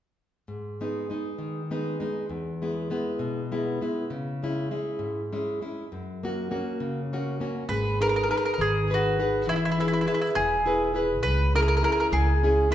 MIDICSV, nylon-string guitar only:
0, 0, Header, 1, 2, 480
1, 0, Start_track
1, 0, Key_signature, 5, "minor"
1, 0, Tempo, 600601
1, 389, Time_signature, 6, 3, 24, 8
1, 6146, Tempo, 590551
1, 10256, End_track
2, 0, Start_track
2, 0, Title_t, "Nylon-string guitar"
2, 0, Program_c, 0, 24
2, 384, Note_on_c, 0, 44, 38
2, 646, Note_on_c, 0, 56, 33
2, 647, Note_on_c, 0, 59, 27
2, 652, Note_on_c, 0, 63, 32
2, 866, Note_off_c, 0, 44, 0
2, 868, Note_off_c, 0, 56, 0
2, 870, Note_off_c, 0, 59, 0
2, 877, Note_off_c, 0, 63, 0
2, 878, Note_on_c, 0, 56, 30
2, 880, Note_on_c, 0, 59, 25
2, 886, Note_on_c, 0, 63, 32
2, 1107, Note_on_c, 0, 51, 37
2, 1274, Note_off_c, 0, 56, 0
2, 1276, Note_off_c, 0, 59, 0
2, 1280, Note_off_c, 0, 63, 0
2, 1366, Note_on_c, 0, 56, 33
2, 1368, Note_on_c, 0, 59, 30
2, 1372, Note_on_c, 0, 63, 38
2, 1588, Note_off_c, 0, 51, 0
2, 1590, Note_off_c, 0, 56, 0
2, 1592, Note_off_c, 0, 59, 0
2, 1599, Note_on_c, 0, 56, 30
2, 1600, Note_off_c, 0, 63, 0
2, 1602, Note_on_c, 0, 59, 25
2, 1610, Note_on_c, 0, 63, 25
2, 1787, Note_off_c, 0, 56, 0
2, 1789, Note_off_c, 0, 59, 0
2, 1793, Note_off_c, 0, 63, 0
2, 1834, Note_on_c, 0, 40, 45
2, 2093, Note_on_c, 0, 56, 28
2, 2097, Note_on_c, 0, 64, 35
2, 2098, Note_on_c, 0, 59, 28
2, 2310, Note_off_c, 0, 56, 0
2, 2312, Note_off_c, 0, 40, 0
2, 2316, Note_off_c, 0, 59, 0
2, 2317, Note_off_c, 0, 64, 0
2, 2320, Note_on_c, 0, 56, 27
2, 2325, Note_on_c, 0, 59, 30
2, 2330, Note_on_c, 0, 64, 33
2, 2552, Note_on_c, 0, 47, 40
2, 2715, Note_off_c, 0, 56, 0
2, 2719, Note_off_c, 0, 59, 0
2, 2720, Note_off_c, 0, 64, 0
2, 2811, Note_on_c, 0, 56, 37
2, 2814, Note_on_c, 0, 59, 32
2, 2816, Note_on_c, 0, 64, 37
2, 3030, Note_off_c, 0, 47, 0
2, 3040, Note_off_c, 0, 56, 0
2, 3042, Note_off_c, 0, 59, 0
2, 3042, Note_off_c, 0, 64, 0
2, 3048, Note_on_c, 0, 56, 31
2, 3053, Note_on_c, 0, 59, 26
2, 3055, Note_on_c, 0, 64, 31
2, 3232, Note_off_c, 0, 56, 0
2, 3233, Note_off_c, 0, 64, 0
2, 3234, Note_off_c, 0, 59, 0
2, 3279, Note_on_c, 0, 49, 51
2, 3537, Note_on_c, 0, 56, 33
2, 3545, Note_on_c, 0, 61, 29
2, 3547, Note_on_c, 0, 64, 37
2, 3751, Note_off_c, 0, 49, 0
2, 3754, Note_off_c, 0, 56, 0
2, 3759, Note_off_c, 0, 64, 0
2, 3762, Note_off_c, 0, 61, 0
2, 3764, Note_on_c, 0, 56, 34
2, 3768, Note_on_c, 0, 64, 32
2, 3771, Note_on_c, 0, 61, 28
2, 3989, Note_on_c, 0, 44, 40
2, 4154, Note_off_c, 0, 56, 0
2, 4157, Note_off_c, 0, 64, 0
2, 4159, Note_off_c, 0, 61, 0
2, 4256, Note_on_c, 0, 56, 39
2, 4260, Note_on_c, 0, 61, 35
2, 4261, Note_on_c, 0, 64, 39
2, 4464, Note_off_c, 0, 44, 0
2, 4477, Note_off_c, 0, 56, 0
2, 4483, Note_off_c, 0, 61, 0
2, 4483, Note_off_c, 0, 64, 0
2, 4486, Note_on_c, 0, 56, 30
2, 4492, Note_on_c, 0, 61, 27
2, 4495, Note_on_c, 0, 64, 36
2, 4667, Note_off_c, 0, 56, 0
2, 4671, Note_off_c, 0, 61, 0
2, 4671, Note_off_c, 0, 64, 0
2, 4731, Note_on_c, 0, 42, 47
2, 4982, Note_on_c, 0, 58, 36
2, 4988, Note_on_c, 0, 61, 28
2, 4994, Note_on_c, 0, 66, 38
2, 5194, Note_off_c, 0, 42, 0
2, 5194, Note_off_c, 0, 58, 0
2, 5195, Note_off_c, 0, 61, 0
2, 5198, Note_off_c, 0, 66, 0
2, 5203, Note_on_c, 0, 58, 38
2, 5207, Note_on_c, 0, 61, 30
2, 5208, Note_on_c, 0, 66, 33
2, 5437, Note_on_c, 0, 49, 48
2, 5593, Note_off_c, 0, 58, 0
2, 5594, Note_off_c, 0, 61, 0
2, 5596, Note_off_c, 0, 66, 0
2, 5697, Note_on_c, 0, 58, 37
2, 5700, Note_on_c, 0, 61, 33
2, 5705, Note_on_c, 0, 66, 37
2, 5906, Note_off_c, 0, 58, 0
2, 5907, Note_off_c, 0, 49, 0
2, 5913, Note_off_c, 0, 66, 0
2, 5915, Note_off_c, 0, 61, 0
2, 5916, Note_on_c, 0, 58, 33
2, 5924, Note_on_c, 0, 61, 32
2, 5925, Note_on_c, 0, 66, 37
2, 6100, Note_off_c, 0, 58, 0
2, 6104, Note_off_c, 0, 66, 0
2, 6105, Note_off_c, 0, 61, 0
2, 6149, Note_on_c, 0, 56, 55
2, 6403, Note_on_c, 0, 63, 33
2, 6403, Note_on_c, 0, 68, 32
2, 6408, Note_on_c, 0, 71, 41
2, 6624, Note_off_c, 0, 63, 0
2, 6628, Note_off_c, 0, 56, 0
2, 6629, Note_off_c, 0, 68, 0
2, 6634, Note_on_c, 0, 63, 37
2, 6637, Note_off_c, 0, 71, 0
2, 6639, Note_on_c, 0, 68, 33
2, 6647, Note_on_c, 0, 71, 42
2, 6867, Note_on_c, 0, 51, 51
2, 7032, Note_off_c, 0, 63, 0
2, 7035, Note_off_c, 0, 68, 0
2, 7039, Note_off_c, 0, 71, 0
2, 7130, Note_on_c, 0, 63, 38
2, 7136, Note_on_c, 0, 68, 38
2, 7138, Note_on_c, 0, 71, 45
2, 7348, Note_off_c, 0, 51, 0
2, 7357, Note_off_c, 0, 63, 0
2, 7360, Note_off_c, 0, 71, 0
2, 7362, Note_off_c, 0, 68, 0
2, 7366, Note_on_c, 0, 63, 33
2, 7371, Note_on_c, 0, 71, 34
2, 7372, Note_on_c, 0, 68, 29
2, 7552, Note_off_c, 0, 63, 0
2, 7554, Note_off_c, 0, 71, 0
2, 7555, Note_off_c, 0, 68, 0
2, 7593, Note_on_c, 0, 52, 52
2, 7849, Note_on_c, 0, 64, 35
2, 7856, Note_on_c, 0, 68, 37
2, 7859, Note_on_c, 0, 71, 43
2, 8064, Note_off_c, 0, 64, 0
2, 8066, Note_off_c, 0, 68, 0
2, 8066, Note_off_c, 0, 71, 0
2, 8071, Note_off_c, 0, 52, 0
2, 8073, Note_on_c, 0, 64, 34
2, 8077, Note_on_c, 0, 68, 32
2, 8079, Note_on_c, 0, 71, 40
2, 8305, Note_on_c, 0, 47, 46
2, 8470, Note_off_c, 0, 64, 0
2, 8471, Note_off_c, 0, 71, 0
2, 8472, Note_off_c, 0, 68, 0
2, 8558, Note_on_c, 0, 64, 44
2, 8563, Note_on_c, 0, 68, 36
2, 8569, Note_on_c, 0, 71, 43
2, 8777, Note_off_c, 0, 64, 0
2, 8784, Note_off_c, 0, 47, 0
2, 8785, Note_off_c, 0, 68, 0
2, 8787, Note_on_c, 0, 64, 31
2, 8792, Note_off_c, 0, 71, 0
2, 8795, Note_on_c, 0, 68, 30
2, 8802, Note_on_c, 0, 71, 37
2, 8977, Note_off_c, 0, 64, 0
2, 8982, Note_off_c, 0, 68, 0
2, 8986, Note_off_c, 0, 71, 0
2, 9019, Note_on_c, 0, 49, 59
2, 9282, Note_on_c, 0, 61, 33
2, 9286, Note_on_c, 0, 64, 35
2, 9291, Note_on_c, 0, 68, 47
2, 9498, Note_off_c, 0, 49, 0
2, 9498, Note_off_c, 0, 61, 0
2, 9499, Note_off_c, 0, 64, 0
2, 9505, Note_off_c, 0, 68, 0
2, 9507, Note_on_c, 0, 61, 38
2, 9510, Note_on_c, 0, 64, 40
2, 9515, Note_on_c, 0, 68, 46
2, 9748, Note_on_c, 0, 56, 47
2, 9901, Note_off_c, 0, 61, 0
2, 9902, Note_off_c, 0, 64, 0
2, 9906, Note_off_c, 0, 68, 0
2, 10000, Note_on_c, 0, 61, 42
2, 10007, Note_on_c, 0, 64, 34
2, 10008, Note_on_c, 0, 68, 48
2, 10214, Note_off_c, 0, 61, 0
2, 10216, Note_off_c, 0, 64, 0
2, 10220, Note_off_c, 0, 56, 0
2, 10224, Note_on_c, 0, 61, 36
2, 10225, Note_off_c, 0, 68, 0
2, 10226, Note_on_c, 0, 64, 28
2, 10256, Note_off_c, 0, 61, 0
2, 10256, Note_off_c, 0, 64, 0
2, 10256, End_track
0, 0, End_of_file